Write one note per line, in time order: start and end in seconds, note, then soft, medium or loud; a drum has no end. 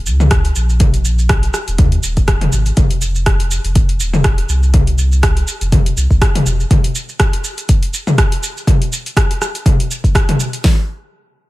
0.07 0.51 C#2 medium
0.07 shaker loud
0.20 mid tom medium
0.20 shaker soft
0.31 kick loud
0.31 cross-stick loud
0.31 closed hi-hat medium
0.31 shaker medium
0.45 closed hi-hat soft
0.45 shaker soft
0.56 1.50 A#1 medium
0.56 shaker loud
0.69 shaker soft
0.80 kick loud
0.80 closed hi-hat medium
0.80 mid tom medium
0.80 shaker medium
0.94 closed hi-hat soft
0.94 shaker soft
1.05 shaker loud
1.19 shaker soft
1.29 kick loud
1.29 cross-stick loud
1.29 closed hi-hat medium
1.29 shaker medium
1.43 closed hi-hat soft
1.43 shaker soft
1.54 cross-stick medium
1.54 shaker loud
1.68 1.78 D#1 loud
1.68 closed hi-hat soft
1.68 shaker soft
1.78 1.98 D#2 loud
1.78 kick loud
1.78 closed hi-hat medium
1.78 mid tom medium
1.78 shaker medium
1.92 closed hi-hat soft
1.92 shaker soft
2.03 2.48 D#1 medium
2.03 shaker loud
2.17 kick medium
2.17 closed hi-hat soft
2.17 shaker soft
2.28 kick loud
2.28 cross-stick loud
2.28 closed hi-hat medium
2.28 shaker medium
2.41 closed hi-hat soft
2.41 mid tom medium
2.41 shaker soft
2.53 2.71 G#1 loud
2.53 shaker loud
2.66 closed hi-hat soft
2.66 shaker soft
2.77 3.59 F1 loud
2.77 kick loud
2.77 closed hi-hat medium
2.77 mid tom medium
2.77 shaker medium
2.90 closed hi-hat soft
2.90 shaker soft
3.02 shaker medium
3.15 shaker soft
3.26 kick loud
3.26 cross-stick loud
3.26 closed hi-hat medium
3.26 shaker medium
3.40 closed hi-hat soft
3.40 shaker soft
3.51 shaker medium
3.64 4.01 F1 loud
3.64 closed hi-hat soft
3.64 shaker soft
3.75 kick loud
3.75 closed hi-hat medium
3.75 shaker medium
3.89 closed hi-hat soft
3.89 shaker soft
4.00 4.45 D#1 medium
4.00 shaker medium
4.13 mid tom medium
4.13 shaker soft
4.24 kick loud
4.24 cross-stick loud
4.24 closed hi-hat medium
4.24 shaker medium
4.38 closed hi-hat soft
4.38 shaker soft
4.49 5.43 C2 medium
4.49 shaker medium
4.63 shaker soft
4.74 kick loud
4.74 closed hi-hat medium
4.74 mid tom loud
4.74 shaker medium
4.87 closed hi-hat soft
4.87 shaker soft
4.98 shaker medium
5.12 shaker soft
5.23 kick loud
5.23 cross-stick loud
5.23 closed hi-hat medium
5.23 shaker medium
5.37 closed hi-hat soft
5.37 shaker soft
5.48 shaker medium
5.61 5.92 F1 loud
5.61 closed hi-hat soft
5.61 shaker soft
5.72 kick loud
5.72 closed hi-hat medium
5.72 mid tom loud
5.72 shaker medium
5.86 closed hi-hat soft
5.86 shaker soft
5.97 6.07 C2 medium
5.97 shaker medium
6.11 6.19 C2 medium
6.11 kick medium
6.11 shaker soft
6.22 kick loud
6.22 cross-stick loud
6.22 closed hi-hat medium
6.22 shaker soft
6.35 closed hi-hat soft
6.35 mid tom loud
6.35 shaker soft
6.46 6.65 F1 medium
6.46 shaker medium
6.60 shaker soft
6.71 kick loud
6.71 closed hi-hat medium
6.71 mid tom loud
6.71 shaker medium
6.84 closed hi-hat soft
6.84 shaker soft
6.95 shaker medium
7.09 shaker soft
7.20 kick loud
7.20 cross-stick loud
7.20 closed hi-hat medium
7.20 shaker medium
7.33 closed hi-hat soft
7.33 shaker soft
7.44 shaker medium
7.58 closed hi-hat soft
7.58 shaker soft
7.69 kick loud
7.69 closed hi-hat medium
7.69 shaker medium
7.83 closed hi-hat soft
7.83 shaker soft
7.94 shaker medium
8.07 mid tom medium
8.07 shaker soft
8.18 kick loud
8.18 cross-stick loud
8.18 closed hi-hat medium
8.18 shaker medium
8.32 closed hi-hat soft
8.32 shaker soft
8.43 shaker medium
8.57 shaker soft
8.67 kick loud
8.67 closed hi-hat medium
8.67 mid tom loud
8.67 shaker medium
8.82 closed hi-hat soft
8.82 shaker soft
8.93 shaker medium
9.06 closed hi-hat soft
9.06 shaker soft
9.17 kick loud
9.17 cross-stick loud
9.17 closed hi-hat medium
9.17 shaker medium
9.31 closed hi-hat soft
9.31 shaker soft
9.42 cross-stick medium
9.42 shaker medium
9.55 closed hi-hat soft
9.55 shaker soft
9.66 kick loud
9.66 closed hi-hat medium
9.66 mid tom loud
9.66 shaker medium
9.80 closed hi-hat soft
9.80 shaker soft
9.91 shaker medium
10.04 kick medium
10.04 closed hi-hat soft
10.04 shaker soft
10.15 kick loud
10.15 cross-stick loud
10.15 closed hi-hat medium
10.15 shaker medium
10.29 closed hi-hat soft
10.29 mid tom loud
10.29 shaker soft
10.40 shaker medium
10.53 closed hi-hat soft
10.53 shaker soft
10.64 kick loud
10.64 snare loud
10.64 open hi-hat medium